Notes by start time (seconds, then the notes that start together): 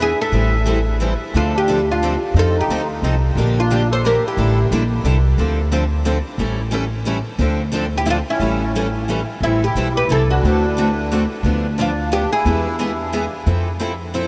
Already playing: E2
0.00 E3 B3 D4 G#4 B4 E5
0.21 A4 E5
0.32 A1 E3 G3 C4 E4 A4
0.67 E3 G3 C4 E4 A4
1.01 E3 G3 C4 E4 A4
1.34 D2 D3 F3 C4 D4 F4 A4
1.54 D4
1.58 G4
1.69 D3 F3 C4 D4 A4
1.87 D4
1.92 F4
2.03 D3 F3 C4 D4 A4
2.34 F2 F3 C4 D#4 F4 A4
2.39 A4
2.58 D#4 G4
2.68 D2 F3 C4 D#4 A4
3.02 C2 F3 C4 D#4 A4
3.35 A#1 D3 F3 A#3 D4 G4
3.57 D4 F4
3.71 D3 F3 A#3 D4 G4
3.91 A4 C5
4.04 D3 F3 A#3 D4 G4 A#4
4.25 E4 G4
4.37 A1 D3 G3 D4 E4 A4
4.71 A#1 D3 G3 D4 E4 A4
5.04 C2 D3 G3 D4 E4 A4
5.38 D2 D3 F3 C4 D4 A4
5.72 D3 F3 C4 D4 A4
6.06 D3 F3 C4 D4 A4
6.38 A1 E3 G3 C#4 E4 A4
6.73 E3 G3 C#4 E4 A4
7.07 E3 G3 C#4 E4 A4
7.38 D2 D3 F3 C4 D4 A4
7.75 D3 F3 C4 D4 A4
7.96 E4 G4
8.05 D3 F3 C4 D4 E4
8.09 D4 F4 A4
8.29 C#4 E4
8.40 A1 E3 G3 C#4 E4 A4
8.75 E3 G3 C#4 E4 A4
9.09 E3 G3 C#4 E4 A4
9.40 A1 E3 G3 C4 E4 A4
9.61 E4 G4
9.75 B1 E3 G3 C4 E4 A4
9.94 G4 B4
10.08 C2 E3 G3 C4 E4 A4
10.28 D4 F#4
10.43 D2 D3 A3 C4 F#4 A4
10.78 D3 A3 C4 F#4 A4
11.12 D3 A3 C4 F#4 A4
11.43 D2 D3 F3 B3 D4
11.78 D3 F3 B3 D4 F4
12.12 D3 F3 B3 D4 G4
12.33 E4 G#4
12.45 E2 E3 G#3 B3 E4 G#4 B4
12.79 E3 G#3 B3 E4 G#4 B4
13.13 E3 G#3 B3 E4 G#4 B4
13.46 F2 F3 C4 E4 A4
13.80 F3 C4 E4 A4
14.14 F3 C4 E4 A4